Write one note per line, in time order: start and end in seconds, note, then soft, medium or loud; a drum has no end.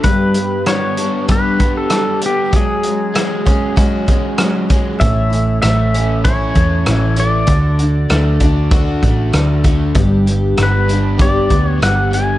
0.03 0.36 G2 medium
0.03 0.36 D3 medium
0.03 0.36 G3 medium
0.03 0.36 B3 medium
0.03 0.35 D4 medium
0.03 0.34 G4 medium
0.03 0.67 B4 medium
0.03 kick medium
0.03 closed hi-hat medium
0.34 0.66 B3 soft
0.34 0.67 D4 soft
0.34 0.66 G4 medium
0.34 closed hi-hat medium
0.39 0.65 G3 soft
0.66 0.98 G3 soft
0.66 0.98 B3 medium
0.66 0.97 D4 medium
0.66 0.96 G4 medium
0.66 1.25 C#5 medium
0.66 cross-stick medium
0.66 closed hi-hat medium
0.97 1.28 G3 soft
0.97 1.27 B3 soft
0.97 1.29 D4 soft
0.97 1.29 G4 soft
0.97 closed hi-hat soft
1.28 1.60 G2 medium
1.28 1.60 D3 medium
1.28 1.60 G3 medium
1.28 1.59 B3 medium
1.28 1.59 D4 medium
1.28 1.57 G4 medium
1.28 1.78 B4 medium
1.28 kick medium
1.28 closed hi-hat medium
1.58 1.88 G3 soft
1.58 1.89 B3 soft
1.58 1.90 D4 soft
1.58 1.90 G4 soft
1.58 kick medium
1.58 closed hi-hat soft
1.77 2.20 A4 medium
1.89 2.21 G3 soft
1.89 2.22 B3 medium
1.89 2.22 D4 medium
1.89 2.22 G4 medium
1.89 cross-stick medium
1.89 closed hi-hat medium
2.21 2.54 B3 soft
2.21 2.54 D4 soft
2.21 2.54 G4 soft
2.21 closed hi-hat medium
2.26 2.52 G3 soft
2.26 2.56 G4 medium
2.52 2.84 F#3 medium
2.52 2.85 G#3 medium
2.52 2.85 C#4 medium
2.52 2.83 F#4 medium
2.52 3.75 G#4 medium
2.52 kick medium
2.52 closed hi-hat medium
2.83 3.17 C#4 soft
2.83 3.15 F#4 medium
2.83 closed hi-hat soft
2.88 3.15 G#3 soft
3.15 3.46 F#3 medium
3.15 3.47 G#3 medium
3.15 3.45 C#4 soft
3.15 3.44 F#4 medium
3.15 cross-stick medium
3.15 closed hi-hat medium
3.45 3.76 G#3 soft
3.45 3.77 C#4 soft
3.45 3.77 F#4 medium
3.45 kick medium
3.45 closed hi-hat soft
3.76 4.08 F#3 medium
3.76 4.08 G#3 medium
3.76 4.07 C#4 medium
3.76 4.05 F#4 medium
3.76 kick medium
3.76 closed hi-hat medium
4.06 4.38 G#3 soft
4.06 4.39 C#4 soft
4.06 4.38 F#4 soft
4.06 kick medium
4.06 closed hi-hat soft
4.38 4.70 F#3 medium
4.38 4.70 G#3 medium
4.38 4.70 C#4 medium
4.38 4.68 F#4 medium
4.38 cross-stick loud
4.38 closed hi-hat medium
4.69 5.00 G#3 soft
4.69 5.00 C#4 soft
4.69 5.01 F#4 medium
4.69 kick medium
4.69 closed hi-hat soft
4.99 5.59 A1 medium
4.99 5.31 A2 medium
4.99 5.32 E3 medium
4.99 5.32 A3 medium
4.99 5.31 C#4 medium
4.99 5.29 E4 medium
4.99 5.61 E5 medium
4.99 kick medium
4.99 closed hi-hat medium
5.30 5.62 A3 soft
5.30 5.63 C#4 soft
5.30 5.62 E4 soft
5.30 closed hi-hat soft
5.62 6.52 A1 medium
5.62 5.94 E3 soft
5.62 5.94 A3 medium
5.62 5.95 C#4 medium
5.62 6.20 E5 medium
5.62 cross-stick medium
5.62 closed hi-hat medium
5.66 5.94 E4 medium
5.94 6.26 C#4 soft
5.94 6.26 E4 soft
5.94 closed hi-hat soft
5.99 6.26 A3 soft
6.24 6.56 A2 medium
6.24 6.57 E3 medium
6.24 6.57 A3 medium
6.24 6.57 C#4 medium
6.24 6.56 E4 medium
6.24 7.19 C#5 medium
6.24 kick medium
6.24 closed hi-hat medium
6.55 6.84 E2 medium
6.55 7.16 A3 soft
6.55 6.88 C#4 soft
6.55 6.88 E4 soft
6.55 kick medium
6.55 closed hi-hat medium
6.61 6.87 A3 soft
6.86 7.45 A1 medium
6.86 7.18 E3 soft
6.86 7.18 A3 soft
6.86 7.19 C#4 medium
6.86 7.15 E4 medium
6.86 cross-stick medium
6.86 closed hi-hat medium
7.16 7.46 A3 soft
7.16 7.48 E4 soft
7.16 9.00 D5 medium
7.16 closed hi-hat soft
7.47 8.06 D2 loud
7.47 7.79 D3 medium
7.47 7.79 A3 medium
7.47 7.79 D4 medium
7.47 7.78 F#4 medium
7.47 kick medium
7.47 closed hi-hat medium
7.79 8.10 A3 soft
7.79 8.10 D4 soft
7.79 8.11 F#4 soft
7.79 closed hi-hat soft
8.09 8.99 D2 medium
8.09 8.41 D3 medium
8.09 8.42 A3 medium
8.09 8.41 D4 medium
8.09 8.39 F#4 medium
8.09 cross-stick medium
8.09 closed hi-hat medium
8.40 8.71 A3 soft
8.40 8.71 D4 soft
8.40 8.72 F#4 medium
8.40 kick medium
8.40 closed hi-hat medium
8.71 9.03 D3 medium
8.71 9.03 A3 medium
8.71 9.03 D4 medium
8.71 9.01 F#4 medium
8.71 kick loud
8.71 closed hi-hat medium
9.02 9.31 A1 medium
9.02 9.33 A3 soft
9.02 9.34 D4 soft
9.02 9.34 F#4 soft
9.02 kick medium
9.02 closed hi-hat soft
9.33 9.92 D2 medium
9.33 9.65 D3 medium
9.33 9.65 A3 medium
9.33 9.65 D4 medium
9.33 9.63 F#4 medium
9.33 cross-stick medium
9.33 closed hi-hat medium
9.64 9.95 A3 soft
9.64 9.95 D4 soft
9.64 9.96 F#4 medium
9.64 kick medium
9.64 closed hi-hat medium
9.95 10.54 G1 loud
9.95 10.26 G2 medium
9.95 10.27 D3 medium
9.95 10.27 G3 medium
9.95 10.27 B3 medium
9.95 10.26 D4 medium
9.95 10.25 G4 medium
9.95 kick medium
9.95 closed hi-hat medium
10.26 10.57 G3 soft
10.26 10.59 B3 soft
10.26 10.58 D4 medium
10.26 10.57 G4 medium
10.26 closed hi-hat soft
10.57 11.47 G1 medium
10.57 10.89 G3 medium
10.57 10.90 B3 soft
10.57 10.90 D4 medium
10.57 10.88 G4 medium
10.57 cross-stick medium
10.57 closed hi-hat medium
10.63 11.24 B4 medium
10.89 11.20 G3 soft
10.89 11.21 B3 soft
10.89 11.21 D4 soft
10.89 11.20 G4 soft
10.89 closed hi-hat soft
11.18 11.51 G2 medium
11.18 11.51 D3 medium
11.18 11.52 G3 medium
11.18 12.38 G4 medium
11.18 11.67 D5 medium
11.18 kick medium
11.18 closed hi-hat medium
11.22 11.52 B3 medium
11.22 11.52 D4 medium
11.22 11.51 G4 medium
11.49 11.79 D2 medium
11.49 12.09 B3 medium
11.49 11.82 G4 soft
11.49 kick medium
11.49 closed hi-hat soft
11.53 11.81 G3 soft
11.53 11.83 B3 soft
11.53 11.83 D4 soft
11.67 11.83 C#5 medium
11.82 12.38 G1 medium
11.82 12.13 G3 soft
11.82 12.14 B3 soft
11.82 12.13 D4 medium
11.82 12.14 G4 medium
11.82 12.14 F#5 medium
11.82 cross-stick medium
11.82 closed hi-hat medium
12.10 12.38 B3 medium
12.10 12.38 D4 soft
12.10 12.38 G#5 medium
12.10 closed hi-hat soft
12.15 12.38 G3 soft
12.15 12.38 B3 soft